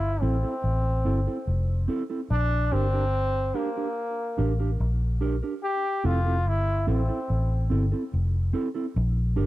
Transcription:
0.00 0.20 G1 medium
0.00 0.23 E4 medium
0.22 0.43 A1 medium
0.22 1.88 C4 medium
0.22 0.35 C4 medium
0.22 0.36 E4 medium
0.22 0.36 A4 medium
0.43 0.54 C4 soft
0.43 0.53 E4 medium
0.43 0.53 A4 medium
0.64 1.03 A1 medium
1.05 1.26 G1 medium
1.05 1.19 C4 medium
1.05 1.19 E4 medium
1.05 1.19 A4 medium
1.27 1.37 C4 soft
1.27 1.37 E4 medium
1.27 1.37 A4 medium
1.47 1.87 F1 medium
1.88 2.02 C4 medium
1.88 2.02 E4 medium
1.88 2.02 A4 medium
2.10 2.20 C4 medium
2.10 2.20 E4 medium
2.10 2.20 A4 medium
2.30 2.70 A#1 loud
2.30 2.74 D4 loud
2.72 3.51 G1 medium
2.72 3.58 C4 loud
2.72 2.85 D4 medium
2.72 2.86 G4 medium
2.72 2.86 A#4 medium
2.93 3.03 D4 soft
2.93 3.03 G4 medium
2.93 3.03 A#4 medium
3.54 4.80 A#3 medium
3.54 3.68 D4 medium
3.54 3.69 G4 medium
3.54 3.69 A#4 medium
3.76 3.87 D4 medium
3.76 3.87 G4 medium
3.76 3.86 A#4 medium
4.38 4.78 A1 medium
4.38 4.52 D4 medium
4.38 4.52 G4 medium
4.38 4.52 A#4 medium
4.59 4.70 D4 medium
4.59 4.70 G4 medium
4.59 4.69 A#4 medium
4.80 5.40 A#1 medium
5.21 5.35 D4 medium
5.21 5.35 G4 medium
5.21 5.35 A#4 medium
5.43 5.53 D4 soft
5.43 5.53 G4 medium
5.43 5.53 A#4 medium
5.63 6.07 G4 loud
6.04 6.46 F1 loud
6.04 6.18 C4 medium
6.04 6.18 E4 medium
6.04 6.49 F4 loud
6.04 6.19 A4 loud
6.25 6.36 C4 medium
6.25 6.36 E4 medium
6.25 6.36 A4 medium
6.46 6.86 G1 medium
6.46 6.88 E4 loud
6.87 7.08 A1 medium
6.87 7.01 C4 medium
6.87 7.67 C4 medium
6.87 7.01 E4 medium
6.87 7.02 A4 loud
7.08 7.19 C4 soft
7.08 7.19 E4 medium
7.08 7.19 A4 medium
7.30 7.69 A1 medium
7.70 7.92 G1 loud
7.70 7.84 C4 medium
7.70 7.85 E4 medium
7.70 7.85 A4 medium
7.92 8.03 C4 medium
7.92 8.02 E4 medium
7.92 8.02 A4 medium
8.13 8.53 F1 medium
8.53 8.67 C4 medium
8.53 8.68 E4 medium
8.53 8.68 A4 loud
8.75 8.86 C4 medium
8.75 8.85 E4 medium
8.75 8.85 A4 medium
8.96 9.36 A#1 loud
9.36 9.46 G1 medium
9.36 9.46 D4 medium
9.36 9.46 G4 medium
9.36 9.46 A#4 loud

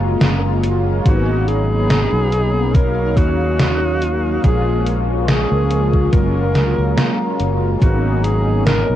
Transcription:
0.00 0.16 F#1 loud
0.00 0.97 F#3 medium
0.00 0.98 G#3 medium
0.00 0.98 A#3 medium
0.00 0.98 C#4 medium
0.00 0.99 F4 medium
0.00 1.04 G#4 medium
0.00 1.01 F5 medium
0.00 1.04 A#5 loud
0.21 1.00 F#1 medium
0.21 snare loud
0.21 closed hi-hat medium
0.63 closed hi-hat medium
1.04 2.06 G#1 medium
1.04 2.66 F#3 medium
1.04 2.67 A#3 medium
1.04 2.67 B3 medium
1.04 2.68 C#4 medium
1.04 2.68 D#4 medium
1.04 1.50 F#4 loud
1.04 4.40 C#5 medium
1.04 2.73 A#5 medium
1.04 2.73 B5 medium
1.04 kick loud
1.04 closed hi-hat medium
1.48 2.76 G#4 loud
1.48 closed hi-hat medium
1.90 snare loud
1.90 closed hi-hat medium
2.13 3.17 B1 medium
2.33 closed hi-hat medium
2.73 4.35 F#3 medium
2.73 4.36 A#3 medium
2.73 4.36 C#4 medium
2.73 4.36 D#4 medium
2.73 3.19 A#4 loud
2.73 6.09 F5 medium
2.73 4.37 F5 medium
2.73 4.42 D#6 loud
2.73 kick loud
2.73 closed hi-hat medium
3.17 4.38 D#2 medium
3.17 4.44 F#4 loud
3.17 kick loud
3.17 closed hi-hat medium
3.60 snare loud
3.60 closed hi-hat medium
4.02 closed hi-hat medium
4.42 5.45 A#1 loud
4.42 6.04 F3 medium
4.42 6.05 G#3 medium
4.42 6.05 A#3 medium
4.42 6.05 C#4 medium
4.42 6.06 F4 medium
4.42 4.99 G#4 loud
4.42 6.12 A#4 medium
4.42 6.12 G#5 medium
4.42 6.11 C#6 medium
4.42 kick loud
4.42 closed hi-hat medium
4.86 closed hi-hat medium
5.28 6.09 G#4 loud
5.28 snare loud
5.28 closed hi-hat medium
5.51 6.07 C#2 medium
5.70 closed hi-hat medium
5.93 kick medium
6.12 6.55 F#1 medium
6.12 7.73 F#3 medium
6.12 7.74 G#3 medium
6.12 7.74 A#3 medium
6.12 7.75 C#4 medium
6.12 7.75 F4 medium
6.12 7.80 G#4 medium
6.12 7.36 A#4 loud
6.12 7.80 F5 medium
6.12 7.80 A#5 medium
6.12 kick loud
6.12 closed hi-hat medium
6.55 6.74 C#2 medium
6.55 snare medium
6.55 closed hi-hat medium
6.78 6.94 C#2 loud
6.97 snare loud
6.97 closed hi-hat medium
7.40 7.75 F#1 medium
7.40 closed hi-hat medium
7.81 8.83 G#1 loud
7.81 8.96 F#3 medium
7.81 8.96 A#3 medium
7.81 8.96 B3 medium
7.81 8.96 C#4 medium
7.81 8.96 D#4 medium
7.81 8.26 F#4 loud
7.81 8.96 C#5 medium
7.81 8.96 G#5 medium
7.81 8.96 A#5 medium
7.81 kick loud
7.81 closed hi-hat medium
8.24 8.65 G#4 loud
8.24 closed hi-hat medium
8.66 8.96 A#4 loud
8.66 snare loud
8.66 closed hi-hat medium
8.90 8.96 B1 medium

